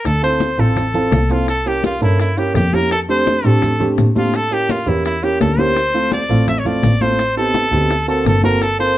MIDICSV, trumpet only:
0, 0, Header, 1, 2, 480
1, 0, Start_track
1, 0, Key_signature, -1, "minor"
1, 0, Tempo, 356930
1, 65, Time_signature, 4, 2, 24, 8
1, 12075, End_track
2, 0, Start_track
2, 0, Title_t, "Trumpet"
2, 0, Program_c, 0, 56
2, 77, Note_on_c, 0, 69, 96
2, 311, Note_off_c, 0, 69, 0
2, 319, Note_on_c, 0, 72, 93
2, 808, Note_on_c, 0, 69, 87
2, 829, Note_off_c, 0, 72, 0
2, 1771, Note_on_c, 0, 65, 82
2, 1791, Note_off_c, 0, 69, 0
2, 1999, Note_off_c, 0, 65, 0
2, 2010, Note_on_c, 0, 69, 94
2, 2253, Note_on_c, 0, 67, 86
2, 2273, Note_off_c, 0, 69, 0
2, 2481, Note_off_c, 0, 67, 0
2, 2497, Note_on_c, 0, 65, 85
2, 2707, Note_off_c, 0, 65, 0
2, 2733, Note_on_c, 0, 64, 79
2, 2945, Note_off_c, 0, 64, 0
2, 2969, Note_on_c, 0, 64, 80
2, 3199, Note_on_c, 0, 67, 77
2, 3219, Note_off_c, 0, 64, 0
2, 3434, Note_off_c, 0, 67, 0
2, 3443, Note_on_c, 0, 67, 85
2, 3686, Note_on_c, 0, 70, 92
2, 3706, Note_off_c, 0, 67, 0
2, 3918, Note_off_c, 0, 70, 0
2, 3926, Note_on_c, 0, 69, 97
2, 4031, Note_off_c, 0, 69, 0
2, 4175, Note_on_c, 0, 72, 105
2, 4645, Note_on_c, 0, 69, 93
2, 4665, Note_off_c, 0, 72, 0
2, 5235, Note_off_c, 0, 69, 0
2, 5613, Note_on_c, 0, 65, 91
2, 5859, Note_on_c, 0, 69, 100
2, 5879, Note_off_c, 0, 65, 0
2, 6095, Note_on_c, 0, 67, 92
2, 6115, Note_off_c, 0, 69, 0
2, 6329, Note_on_c, 0, 65, 83
2, 6349, Note_off_c, 0, 67, 0
2, 6568, Note_on_c, 0, 64, 87
2, 6589, Note_off_c, 0, 65, 0
2, 6789, Note_off_c, 0, 64, 0
2, 6797, Note_on_c, 0, 64, 89
2, 7044, Note_on_c, 0, 67, 85
2, 7064, Note_off_c, 0, 64, 0
2, 7268, Note_off_c, 0, 67, 0
2, 7276, Note_on_c, 0, 69, 97
2, 7522, Note_on_c, 0, 72, 111
2, 7542, Note_off_c, 0, 69, 0
2, 8237, Note_off_c, 0, 72, 0
2, 8249, Note_on_c, 0, 74, 100
2, 8687, Note_off_c, 0, 74, 0
2, 8724, Note_on_c, 0, 76, 96
2, 8859, Note_on_c, 0, 73, 72
2, 8879, Note_off_c, 0, 76, 0
2, 8967, Note_on_c, 0, 74, 99
2, 8987, Note_off_c, 0, 73, 0
2, 9435, Note_on_c, 0, 72, 112
2, 9455, Note_off_c, 0, 74, 0
2, 9913, Note_off_c, 0, 72, 0
2, 9918, Note_on_c, 0, 69, 107
2, 10819, Note_off_c, 0, 69, 0
2, 10886, Note_on_c, 0, 69, 84
2, 11101, Note_off_c, 0, 69, 0
2, 11130, Note_on_c, 0, 69, 90
2, 11343, Note_off_c, 0, 69, 0
2, 11358, Note_on_c, 0, 70, 95
2, 11595, Note_on_c, 0, 69, 104
2, 11615, Note_off_c, 0, 70, 0
2, 11828, Note_off_c, 0, 69, 0
2, 11836, Note_on_c, 0, 72, 105
2, 12075, Note_off_c, 0, 72, 0
2, 12075, End_track
0, 0, End_of_file